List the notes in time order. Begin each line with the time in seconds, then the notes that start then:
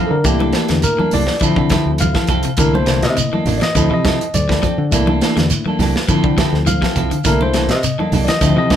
Already playing: F3 C4 E4 A4 F5
0.07 A4
0.11 D3 A#4
0.24 C2 E3 A3 A#3 D4 E4 G4 A4, kick, closed hi-hat, shekere
0.40 E3 A#3 D4 A4, high conga
0.53 E3 A#3 D4 A4, snare, closed hi-hat, shekere
0.68 E2 D3, snare, closed hi-hat
0.82 A#4, closed hi-hat, high conga, shekere
0.98 E3 A#3 D4 A4, muted fingered electric bass stroke, high conga
1.11 C2 E3 A#3 D4 A4 D5, open hi-hat, high conga, low conga, shekere
1.27 snare
1.40 D3 F3 C4 E4 A4, kick, closed hi-hat, shekere
1.56 C3 D3 C4 E4 A4, kick
1.70 D3 F3 C4 E4 A4, kick, snare, closed hi-hat, high conga, low conga, shekere
1.86 D2
1.98 E3 F5, closed hi-hat, high conga, low conga, shekere
2.15 E3 C4 E4 A4, kick, snare
2.27 C2 F3 C4 E4 A4, kick, closed hi-hat, low conga, shekere
2.43 C3, muted fingered electric bass stroke, closed hi-hat
2.57 C2 D3 E3 A3 A#3 D4 E4 A4 A#4, kick, closed hi-hat, shekere
2.74 A#3 D4 A4 C5, high conga
2.86 C3 E3 A#3 D4 A4, snare, closed hi-hat, shekere
3.02 C3 D#5, snare, closed hi-hat
3.17 C3, closed hi-hat, high conga, shekere
3.32 E3 A#3 D4 A4, muted fingered electric bass stroke, high conga
3.45 A1 E3 A#3 D4, open hi-hat, high conga, low conga, shekere
3.58 E3 D5, closed hi-hat
3.62 D#5, snare
3.75 D2 D3 F3 C4 E4 A4, kick, closed hi-hat, shekere
3.91 C3 E3 C4 E4 A4 D#5
4.05 F3 C4 E4 A4, kick, snare, closed hi-hat, high conga, low conga, shekere
4.21 closed hi-hat
4.34 D2 D5, closed hi-hat, high conga, low conga, shekere
4.49 F3 C4 E4 A4, kick, snare
4.63 F3 C4 A4, muted clean electric guitar stroke, kick, closed hi-hat, low conga, shekere
4.78 D3
4.91 C2 E3 A3 A#3 D4 E4 A4, kick, closed hi-hat, shekere
5.07 E3 A#3 D4 A4, high conga
5.21 E3 A#3 D4 A4, snare, closed hi-hat, shekere
5.37 E2 D3, snare, closed hi-hat
5.50 closed hi-hat, high conga, shekere
5.66 E3 A#3 D4 A4, muted fingered electric bass stroke, high conga
5.79 C2 E3 A#3 D4 A4, snare, open hi-hat, high conga, low conga, shekere
5.96 snare
6.08 D3 F3 C4 E4 A4, kick, closed hi-hat, shekere
6.24 C3 D3 C4 E4 A4, kick
6.38 D3 F3 C4 E4 A4, kick, snare, closed hi-hat, high conga, low conga, shekere
6.53 D2, snare
6.66 E3 F5, closed hi-hat, high conga, low conga, shekere
6.82 F3 C4 E4 A4, kick, snare
6.96 C2 F3 C4 E4 A4, kick, closed hi-hat, low conga, shekere
7.11 D3, muted fingered electric bass stroke, closed hi-hat
7.24 C2 D3 A3 A#3 D4 E4 A4 A#4, muted clean electric guitar stroke, kick, snare, closed hi-hat, shekere
7.41 A#3 D4 A4 C5, high conga
7.54 C3 E3 A#3 A4, snare, closed hi-hat, shekere
7.68 C3 D#5, snare, closed hi-hat
7.83 C3, closed hi-hat, high conga, shekere
7.98 E3 A#3 D4 A4, muted fingered electric bass stroke, high conga
8.12 C2 E3 A#3 D4 A4, open hi-hat, high conga, low conga, shekere
8.24 E3 D5, closed hi-hat
8.29 D#5, snare
8.41 D2 D3 F3 C4 E4 A4, kick, closed hi-hat, shekere
8.56 C3 E3 C4 E4 A4 D#5
8.70 F3 C4 E4 A4, kick, snare, closed hi-hat, high conga, low conga, shekere